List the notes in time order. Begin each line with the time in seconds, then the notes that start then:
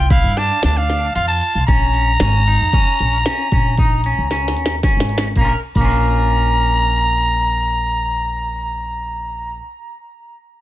Already playing: C2 G5
0.10 E4 F5, kick, closed hi-hat
0.24 G2
0.37 D4 A5, snare, closed hi-hat
0.63 D2 D4 A5, snare, closed hi-hat
0.77 F5
0.90 snare, closed hi-hat
1.15 F2 F4 F5, closed hi-hat
1.28 A5
1.41 closed hi-hat
1.55 C2
1.67 A#1 C#4 A#5, kick, closed hi-hat
1.94 closed hi-hat
2.20 G#1 C#4, snare, closed hi-hat
2.47 D#4, closed hi-hat
2.61 F2
2.73 C#4, kick, closed hi-hat
2.99 A#1, closed hi-hat
3.26 C#4, snare, closed hi-hat
3.52 A#1 C#4, kick, closed hi-hat
3.78 D#4, kick, closed hi-hat
4.04 C#4, closed hi-hat
4.18 C#2
4.31 C#4, snare, closed hi-hat
4.48 snare
4.57 D#2, closed hi-hat
4.66 snare
4.83 C#4, kick, snare, closed hi-hat
4.97 G#1, snare
5.09 closed hi-hat
5.18 snare
5.36 A#1 A#3 A#5, kick, ride
5.41 C#4 F4
5.49 A#4
5.75 A#1 A#3 A#5, kick, ride
5.81 C#4 F4
5.88 A#4